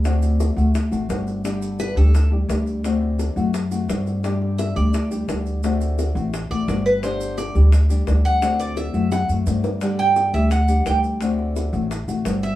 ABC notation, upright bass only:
X:1
M:4/4
L:1/8
Q:1/4=172
K:Dmix
V:1 name="Upright bass" clef=bass
D,,3 D,,2 A,,, G,,,2- | G,,,3 D,,3 D,,2- | D,,3 F,,3 G,,2- | G,,3 D,,3 D,,2- |
D,,3 A,,,2 A,,, G,,,2- | G,,,3 D,,3 D,,2- | D,,3 F,,2 F,, G,,2- | G,,3 D,,3 D,,2- |
D,,3 A,,,2 A,,, G,,,2 |]